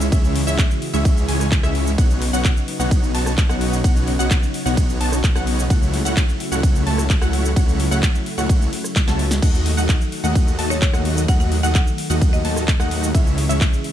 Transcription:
Already playing: C#3 E3 G#3 E4
0.01 shaker
0.12 C#2 G#3 C#4 E4 F#4 C#5 E5, kick, ride, shaker
0.24 shaker
0.35 open hi-hat
0.47 C#2 G#3 C#4 E4 C#5 E5, shaker
0.59 kick, clap, ride, shaker
0.71 shaker
0.82 open hi-hat
0.94 C#2 G#3 C#4 E4 C#5 E5, shaker
1.05 kick, ride, shaker
1.17 shaker
1.28 C#2 G#3 C#4 E4 C#5 G#5, open hi-hat
1.40 cross-stick, shaker
1.52 kick, clap, ride, shaker
1.63 C#2 G#3 C#4 E4 C#5 E5, cross-stick, shaker
1.75 open hi-hat
1.87 shaker
1.98 B1 C#3 F#3 B3 D#4 F#4 C#5 F#5, kick, ride, shaker
2.10 shaker
2.22 open hi-hat
2.33 B1 B3 D#4 F#4 C#5 F#5, shaker
2.45 kick, clap, ride, shaker
2.57 shaker
2.68 open hi-hat
2.80 B1 B3 D#4 F#4 C#5 F#5, shaker
2.91 kick, ride, shaker
3.04 shaker
3.14 B1 B3 D#4 F#4 C#5 A5, open hi-hat
3.26 cross-stick, shaker
3.38 kick, clap, ride, shaker
3.49 B1 B3 D#4 F#4 C#5 F#5, cross-stick, shaker
3.61 open hi-hat
3.73 shaker
3.84 B1 B3 C#4 D#4 F#4 C#5 F#5, kick, ride, shaker
3.96 shaker
4.08 open hi-hat
4.19 B1 B3 D#4 F#4 C#5 F#5, shaker
4.31 kick, clap, ride, shaker
4.43 shaker
4.54 open hi-hat
4.66 B1 B3 D#4 F#4 C#5 F#5, shaker
4.77 kick, ride, shaker
4.90 shaker
5.00 B1 B3 D#4 F#4 C#5 A5, open hi-hat
5.12 cross-stick, shaker
5.24 kick, clap, ride, shaker
5.35 B1 B3 D#4 F#4 C#5 F#5, cross-stick, shaker
5.47 open hi-hat
5.59 shaker
5.70 C#2 A3 E4 F#4 C#5 F#5, kick, ride, shaker
5.83 shaker
5.94 open hi-hat
6.05 C#2 A3 E4 F#4 C#5 F#5, shaker
6.17 kick, clap, ride, shaker
6.29 shaker
6.40 open hi-hat
6.52 C#2 A3 E4 F#4 C#5 F#5, shaker
6.63 kick, ride, shaker
6.76 shaker
6.87 C#2 A3 E4 F#4 C#5 A5, open hi-hat
6.98 cross-stick, shaker
7.10 kick, clap, ride, shaker
7.21 C#2 A3 E4 F#4 C#5 F#5, cross-stick, shaker
7.33 open hi-hat
7.45 shaker
7.56 C#2 A3 E4 F#4 C#5 F#5, kick, ride, shaker
7.69 shaker
7.80 open hi-hat
7.91 C#2 A3 E4 F#4 C#5 F#5, shaker
8.03 kick, clap, ride, shaker
8.15 shaker
8.26 open hi-hat
8.38 C#2 A3 E4 F#4 C#5 F#5, shaker
8.49 kick, ride, shaker
8.62 shaker
8.73 open hi-hat
8.84 cross-stick, shaker
8.96 kick, snare, clap, ride, shaker
9.07 C#2 A3 E4 F#4 C#5 A5, snare, shaker
9.19 open hi-hat
9.31 snare, shaker
9.42 D#2 D#3 A3 D#4 F#4 D#5 F#5, kick, crash, ride, shaker
9.55 shaker
9.66 open hi-hat
9.77 D#2 A3 D#4 F#4 D#5 F#5, shaker
9.89 kick, clap, ride, shaker
10.01 shaker
10.12 open hi-hat
10.24 D#2 A3 D#4 F#4 D#5 F#5, shaker
10.35 kick, ride, shaker
10.48 shaker
10.59 D#2 A3 D#4 F#4 D#5 A5, open hi-hat
10.70 C#5, cross-stick, shaker
10.82 kick, clap, ride, shaker
10.94 D#2 A3 D#4 F#4 D#5 F#5, cross-stick, shaker
11.05 open hi-hat
11.17 shaker
11.28 D#2 A3 D#4 F#4 D#5 F#5, kick, ride, shaker
11.40 F#5, shaker
11.52 open hi-hat
11.63 D#2 A3 D#4 F#4 D#5 F#5, shaker
11.75 F#5, kick, clap, ride, shaker
11.87 shaker
11.98 open hi-hat
12.10 D#2 A3 D#4 F#4 D#5 F#5, shaker
12.21 kick, ride, shaker
12.33 D#5, shaker
12.45 D#2 A3 D#4 F#4 D#5 A5, open hi-hat
12.56 cross-stick, shaker
12.68 kick, clap, ride, shaker
12.80 D#2 A3 D#4 F#4 D#5 F#5, cross-stick, shaker
12.91 open hi-hat
13.04 shaker
13.15 C#2 C#3 E3 G#3 C#4 E4 C#5 E5, kick, ride, shaker
13.27 shaker
13.38 open hi-hat
13.49 C#2 G#3 C#4 E4 C#5 E5, shaker
13.61 kick, clap, ride, shaker
13.73 shaker
13.84 open hi-hat

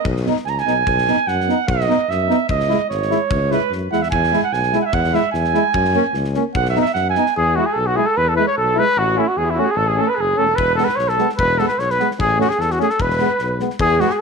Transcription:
0.04 B1, kick
0.17 snare
0.25 B3 D#4, snare
0.37 snare
0.45 C#2 G#5 A#5, snare
0.58 G#5, snare
0.66 B1 B3 D#4, snare
0.87 B1, kick
0.98 snare
1.07 B3 D#4, snare
1.27 F#2 F#5, snare
1.40 snare
1.47 B3 D#4, snare
1.67 B1 D#5, kick
1.80 snare
1.88 B3 D#4, snare
2.09 F#2 E5, snare
2.29 B3 D#4, snare
2.49 C#2 D#5, kick
2.60 snare
2.69 G#3 E4, snare
2.90 G#1 C#5, snare
3.02 snare
3.11 G#3 E4, snare
3.31 C#2, kick
3.50 G#3 E4 B4, snare
3.70 F#2, snare
3.91 E2 G#3 E4 F#5, snare
4.02 E5, snare
4.11 E2 G#5, kick
4.24 snare
4.33 G#3 E4, snare
4.44 F#5
4.53 B1 G#5, snare
4.63 snare
4.73 G#3 E4, snare
4.81 F#5
4.86 E5
4.93 E2 F#5, kick
5.04 snare
5.13 G#3 E4 E5, snare
5.32 E2 G#5, snare
5.44 snare
5.54 G#3 E4, snare
5.74 F#2, kick
5.85 snare
5.93 A#3 C#4, snare
6.14 C#2, snare
6.24 snare
6.34 A#3 C#4, snare
6.54 B1 F#5, kick
6.65 E5, snare
6.75 B3 D#4, snare
6.81 E5
6.86 snare
6.94 F#2 F#5, snare
7.10 G#5
7.15 B3 D#4, snare
7.26 snare
7.37 E2 G#4
7.55 G#3 E4 F#4
7.66 G#4
7.73 B1 A4
7.79 A4
7.87 F#4
7.95 G#3 E4 G#4
8.06 A4
8.17 E2 B4
8.28 A4
8.35 G#3 E4 B4
8.47 C#5
8.57 B1 A4
8.75 G#3 E4
8.79 B4
8.97 A1 F#4
9.16 A3 C#4 E4
9.28 F#4
9.37 E2 G#4
9.45 E4
9.50 E4
9.55 A3 C#4 F#4
9.59 F#4
9.66 G#4
9.71 G#4 A4
9.76 A1 A4
9.86 G#4
9.97 A3 C#4 A4
10.01 A4
10.07 B4
10.15 F#1 G#4
10.21 G#4
10.36 E1 A3 C#4 A4
10.56 E1 B4, kick
10.75 G#3 B3 A4, snare
10.85 B4
10.89 snare
10.96 B1 C#5, snare
11.08 A4, snare
11.17 G#3 B3, snare
11.29 snare
11.38 E1 B4, kick
11.58 G#3 B3 A4, snare
11.68 B4, snare
11.79 B1 C#5, snare
11.88 B4, snare
11.99 G#3 B3, snare
12.11 snare
12.18 A1 G#4, kick
12.39 A3 C#4 F#4, snare
12.49 G#4, snare
12.58 E2 A4, snare
12.69 F#4, snare
12.78 A3 C#4 G#4, snare
12.90 A4, snare
13.00 E1 B4, kick
13.10 snare
13.19 G#3 B3, snare
13.39 B1, snare
13.60 G#3 B3, snare
13.70 snare
13.79 E2 G#4, kick
13.99 G#3 B3 F#4, snare
14.09 G#4, snare

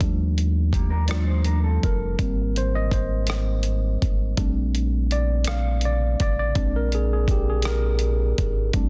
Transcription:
0.01 D#2 F3 G3 A3 D4, kick, closed hi-hat
0.38 closed hi-hat
0.73 A#3 G4, kick, closed hi-hat
0.90 D4 A#4
1.08 F3 G3 A3 D4 F4 D5, cross-stick, closed hi-hat
1.27 D#4 C5
1.44 D4 A#4, closed hi-hat
1.63 C4 A4
1.83 F1 A#4, kick, closed hi-hat
2.19 G#1 G3 A#3 C4, kick, closed hi-hat
2.56 C5, closed hi-hat
2.75 D#5
2.91 C5, kick, closed hi-hat
3.27 cross-stick, closed hi-hat
3.63 closed hi-hat
4.02 G#1, kick, closed hi-hat
4.37 A#1 G3 A3 C4 D4, kick, closed hi-hat
4.75 closed hi-hat
5.11 D5, closed hi-hat
5.44 F5, cross-stick, closed hi-hat
5.81 closed hi-hat
5.85 D5
6.20 A1 D5, kick, closed hi-hat
6.39 D5
6.55 A#1 G#3 C4 D4, kick, closed hi-hat
6.76 A#4
6.92 G#4, closed hi-hat
7.13 G#4
7.28 G4, kick, closed hi-hat
7.50 G#4
7.62 cross-stick, closed hi-hat
7.67 A#4
7.99 closed hi-hat
8.38 G#1, kick, closed hi-hat
8.73 A#1 G3 A3 C4 D4, kick, closed hi-hat

